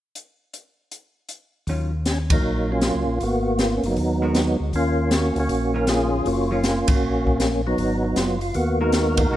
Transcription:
0.15 closed hi-hat medium
0.53 closed hi-hat medium
0.91 closed hi-hat medium
1.29 closed hi-hat medium
1.67 2.40 D#2 medium
1.67 1.91 D#3 soft
1.67 1.91 F#3 medium
1.67 1.91 C#4 medium
1.67 1.91 F4 medium
1.67 kick soft
1.67 open hi-hat soft
2.06 2.18 C#4 medium
2.06 snare medium
2.06 closed hi-hat medium
2.30 3.04 F#3 medium
2.30 2.71 A#3 medium
2.30 2.71 D#4 medium
2.30 kick medium
2.30 ride medium
2.44 2.91 A#1 medium
2.72 3.19 A#3 medium
2.72 3.19 C#4 medium
2.72 3.24 F4 medium
2.81 snare medium
2.81 closed hi-hat soft
2.95 3.07 C#2 medium
3.07 3.19 A#1 medium
3.20 3.79 G#1 medium
3.20 3.94 A#3 medium
3.20 3.86 B3 medium
3.20 3.61 F#4 medium
3.20 kick soft
3.20 open hi-hat soft
3.59 snare medium
3.59 closed hi-hat soft
3.63 3.75 F4 medium
3.77 3.85 C#4 medium
3.83 3.96 G1 medium
3.83 4.58 F#3 medium
3.83 4.58 B3 medium
3.83 4.57 D#4 medium
3.83 open hi-hat soft
3.97 4.56 D#2 medium
3.97 kick soft
3.97 open hi-hat soft
4.22 4.71 G#3 medium
4.22 4.71 B3 medium
4.22 4.71 F#4 medium
4.22 4.72 A#4 medium
4.35 snare medium
4.35 closed hi-hat soft
4.60 4.72 D2 medium
4.73 5.32 D#2 medium
4.73 5.39 A#3 medium
4.73 5.38 C#4 medium
4.73 5.10 F4 medium
4.73 kick soft
4.73 open hi-hat soft
5.11 5.38 F#4 medium
5.11 snare medium
5.11 closed hi-hat medium
5.35 5.48 D2 medium
5.35 open hi-hat soft
5.39 6.10 A#3 medium
5.39 5.88 C#4 medium
5.39 5.73 F#4 medium
5.49 6.22 A#1 medium
5.49 kick soft
5.49 open hi-hat soft
5.74 6.23 D#3 medium
5.74 6.23 F#3 medium
5.74 6.24 C#4 medium
5.74 6.24 F4 medium
5.74 5.89 A#4 medium
5.87 6.25 C#4 medium
5.87 6.51 F4 medium
5.87 6.28 G#4 medium
5.87 snare medium
5.87 closed hi-hat medium
6.25 6.85 F#1 medium
6.25 6.51 A#3 medium
6.25 6.51 C#4 medium
6.25 6.52 F#4 medium
6.25 kick soft
6.25 open hi-hat soft
6.51 6.63 D#3 medium
6.51 6.63 F#3 medium
6.51 6.88 A#3 medium
6.51 6.89 C#4 medium
6.51 6.63 C#4 medium
6.51 6.91 F4 medium
6.51 6.63 F4 medium
6.64 snare medium
6.64 closed hi-hat medium
6.88 6.95 F#1 soft
6.88 7.61 A#3 medium
6.88 7.62 C#4 medium
6.88 7.37 F#4 medium
6.88 kick medium
6.88 ride medium
7.02 7.75 A#1 medium
7.27 kick medium
7.40 snare medium
7.40 closed hi-hat soft
7.67 8.38 F#3 medium
7.67 8.38 B3 medium
7.67 8.03 D#4 loud
7.78 8.14 G#1 medium
7.78 kick soft
7.78 open hi-hat soft
8.04 8.18 D#4 medium
8.16 8.52 F#1 medium
8.16 8.40 F4 medium
8.16 snare medium
8.16 closed hi-hat soft
8.41 8.56 F4 medium
8.41 open hi-hat soft
8.54 9.27 D#2 medium
8.54 9.28 A#3 medium
8.54 9.28 B3 medium
8.54 8.79 F#4 medium
8.54 kick soft
8.54 open hi-hat soft
8.81 9.29 G#3 medium
8.81 9.19 D#4 medium
8.81 9.19 F#4 medium
8.81 9.30 F#4 medium
8.81 9.20 A#4 medium
8.81 9.30 A#4 medium
8.92 snare medium
8.92 closed hi-hat medium
9.17 9.37 D#4 medium
9.17 9.37 F#4 medium
9.17 9.37 A#4 medium
9.17 kick medium
9.17 ride medium
9.31 9.37 B1 medium
9.31 9.37 G#3 medium
9.31 9.37 B3 medium
9.31 9.37 F#4 medium
9.31 9.37 A#4 medium

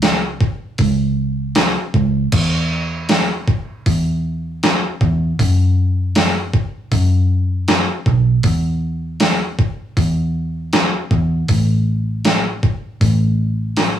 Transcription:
0.00 0.53 C#2 medium
0.00 snare loud
0.00 open hi-hat medium
0.41 kick medium
0.78 1.75 C#2 medium
0.78 kick medium
0.78 open hi-hat medium
1.55 snare loud
1.55 open hi-hat medium
1.94 2.26 C#2 medium
1.94 kick medium
2.32 3.60 E2 medium
2.32 kick loud
2.32 crash loud
3.09 snare loud
3.09 open hi-hat medium
3.48 kick medium
3.86 4.81 E2 medium
3.86 kick medium
3.86 open hi-hat medium
4.63 snare loud
4.63 open hi-hat medium
5.01 5.32 E2 medium
5.01 kick medium
5.39 6.66 F#2 medium
5.39 kick loud
5.39 open hi-hat medium
6.15 snare loud
6.15 open hi-hat medium
6.54 kick medium
6.92 7.87 F#2 medium
6.92 kick medium
6.92 open hi-hat medium
7.68 snare loud
7.68 open hi-hat medium
8.06 8.38 B1 medium
8.06 kick medium
8.43 9.71 E2 loud
8.43 kick loud
8.43 open hi-hat medium
9.20 snare loud
9.20 open hi-hat medium
9.59 kick medium
9.97 10.92 E2 medium
9.97 kick medium
9.97 open hi-hat medium
10.73 snare loud
10.73 open hi-hat medium
11.11 11.43 E2 medium
11.11 kick medium
11.48 12.76 A1 medium
11.48 kick loud
11.48 open hi-hat medium
12.25 snare loud
12.25 open hi-hat medium
12.63 kick medium
13.01 13.96 A1 medium
13.01 kick medium
13.01 open hi-hat medium
13.77 snare medium
13.77 open hi-hat medium

